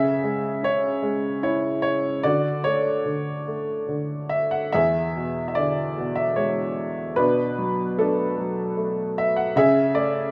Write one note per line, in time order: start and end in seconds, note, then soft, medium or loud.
0.00 2.20 C#3 medium
0.00 0.99 G#4 medium
0.00 0.59 E5 loud
0.24 1.01 G#3 soft
0.63 2.20 C#4 soft
0.63 1.42 C#5 medium
1.02 2.20 G#3 soft
1.43 2.22 E4 medium
1.43 1.80 C#5 medium
1.82 2.25 C#5 medium
2.23 3.04 D3 medium
2.23 3.43 F#4 medium
2.23 2.66 D5 medium
2.64 3.46 A3 soft
2.64 3.43 C#5 medium
3.06 3.87 D3 soft
3.47 4.71 A3 soft
3.89 4.71 D3 soft
4.29 4.53 E5 medium
4.51 4.74 F#5 medium
4.72 7.13 E2 medium
4.72 5.93 G#4 medium
4.72 5.45 E5 medium
5.17 5.96 B2 soft
5.48 5.56 E5 medium
5.55 7.13 D3 soft
5.55 6.18 D5 medium
5.97 7.14 B2 soft
6.15 6.37 E5 medium
6.36 7.15 G#3 soft
6.36 7.19 C#5 medium
7.16 9.51 B2 medium
7.16 7.99 D4 medium
7.16 8.00 B4 medium
7.58 8.36 F#3 soft
7.98 8.76 A3 soft
7.98 9.13 D4 medium
7.98 9.20 A4 medium
8.38 9.52 F#3 soft
8.77 9.53 A3 soft
9.18 9.37 E5 medium
9.36 9.56 F#5 medium
9.56 10.31 C#3 medium
9.56 10.31 G#4 medium
9.56 9.93 E5 loud
9.95 10.31 A3 medium
9.95 10.31 D5 medium